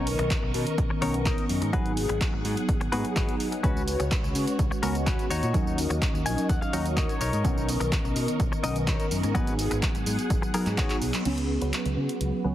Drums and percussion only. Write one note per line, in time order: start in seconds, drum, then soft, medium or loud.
0.07 open hi-hat loud
0.19 closed hi-hat soft
0.30 kick loud
0.30 clap loud
0.30 closed hi-hat medium
0.54 open hi-hat loud
0.67 closed hi-hat medium
0.78 kick loud
0.78 closed hi-hat medium
1.02 open hi-hat loud
1.14 closed hi-hat soft
1.26 kick loud
1.26 clap loud
1.26 closed hi-hat medium
1.38 closed hi-hat soft
1.49 open hi-hat loud
1.62 closed hi-hat soft
1.73 kick loud
1.73 closed hi-hat medium
1.86 closed hi-hat soft
1.97 open hi-hat loud
2.09 closed hi-hat soft
2.21 kick loud
2.21 clap loud
2.21 closed hi-hat medium
2.45 open hi-hat loud
2.57 closed hi-hat soft
2.69 kick loud
2.69 closed hi-hat medium
2.81 closed hi-hat soft
2.92 open hi-hat loud
3.05 closed hi-hat soft
3.16 kick loud
3.16 clap loud
3.16 closed hi-hat medium
3.29 closed hi-hat soft
3.40 open hi-hat loud
3.52 closed hi-hat medium
3.64 kick loud
3.64 closed hi-hat medium
3.64 tambourine soft
3.77 tambourine soft
3.88 open hi-hat loud
3.88 tambourine medium
4.00 closed hi-hat medium
4.00 tambourine soft
4.11 kick loud
4.11 clap loud
4.11 closed hi-hat medium
4.11 tambourine soft
4.24 tambourine soft
4.35 open hi-hat loud
4.35 tambourine medium
4.47 closed hi-hat medium
4.47 tambourine soft
4.59 kick loud
4.59 closed hi-hat medium
4.59 tambourine soft
4.72 tambourine soft
4.83 open hi-hat loud
4.83 tambourine medium
4.95 closed hi-hat soft
4.95 tambourine soft
5.07 kick loud
5.07 clap loud
5.07 closed hi-hat medium
5.07 tambourine soft
5.19 closed hi-hat soft
5.19 tambourine soft
5.31 open hi-hat loud
5.31 tambourine medium
5.43 closed hi-hat soft
5.43 tambourine soft
5.54 kick loud
5.54 closed hi-hat medium
5.54 tambourine soft
5.67 tambourine soft
5.78 open hi-hat loud
5.78 tambourine medium
5.90 closed hi-hat medium
5.90 tambourine soft
6.02 kick loud
6.02 clap loud
6.02 closed hi-hat medium
6.02 tambourine soft
6.15 tambourine soft
6.26 open hi-hat loud
6.26 tambourine medium
6.38 closed hi-hat medium
6.38 tambourine soft
6.49 kick loud
6.49 closed hi-hat medium
6.49 tambourine soft
6.62 tambourine soft
6.73 open hi-hat loud
6.73 tambourine medium
6.86 closed hi-hat medium
6.86 tambourine soft
6.97 kick loud
6.97 clap loud
6.97 closed hi-hat medium
6.97 tambourine soft
7.09 closed hi-hat soft
7.09 tambourine soft
7.21 open hi-hat loud
7.21 tambourine medium
7.33 closed hi-hat medium
7.33 tambourine soft
7.45 kick loud
7.45 closed hi-hat medium
7.45 tambourine soft
7.58 tambourine soft
7.69 open hi-hat loud
7.69 tambourine medium
7.81 closed hi-hat medium
7.81 tambourine soft
7.92 kick loud
7.92 clap loud
7.92 closed hi-hat medium
7.92 tambourine soft
8.05 tambourine soft
8.16 open hi-hat loud
8.16 tambourine medium
8.28 closed hi-hat medium
8.28 tambourine soft
8.40 kick loud
8.40 closed hi-hat medium
8.40 tambourine medium
8.53 tambourine soft
8.64 open hi-hat loud
8.64 tambourine medium
8.76 closed hi-hat medium
8.76 tambourine soft
8.87 kick loud
8.87 clap loud
8.87 closed hi-hat medium
8.87 tambourine soft
9.00 closed hi-hat soft
9.00 tambourine soft
9.11 open hi-hat loud
9.11 tambourine medium
9.23 closed hi-hat medium
9.23 tambourine soft
9.35 kick loud
9.35 closed hi-hat medium
9.35 tambourine soft
9.47 closed hi-hat soft
9.47 tambourine soft
9.59 open hi-hat loud
9.59 tambourine medium
9.71 closed hi-hat medium
9.71 tambourine soft
9.83 kick loud
9.83 clap loud
9.83 closed hi-hat medium
9.83 tambourine soft
9.95 closed hi-hat soft
9.95 tambourine soft
10.06 open hi-hat loud
10.06 tambourine medium
10.19 closed hi-hat medium
10.19 tambourine soft
10.30 kick loud
10.30 closed hi-hat medium
10.30 tambourine soft
10.43 tambourine soft
10.54 open hi-hat loud
10.54 tambourine medium
10.66 clap soft
10.66 closed hi-hat medium
10.66 tambourine soft
10.78 kick loud
10.78 clap loud
10.78 closed hi-hat medium
10.78 tambourine soft
10.90 clap medium
10.90 closed hi-hat soft
10.90 tambourine soft
11.02 open hi-hat loud
11.02 tambourine medium
11.14 clap loud
11.14 closed hi-hat medium
11.14 tambourine soft
11.25 closed hi-hat medium
11.25 crash medium
11.38 closed hi-hat soft
11.62 closed hi-hat soft
11.73 clap loud
11.73 closed hi-hat medium
11.86 closed hi-hat soft
12.09 closed hi-hat medium
12.21 closed hi-hat medium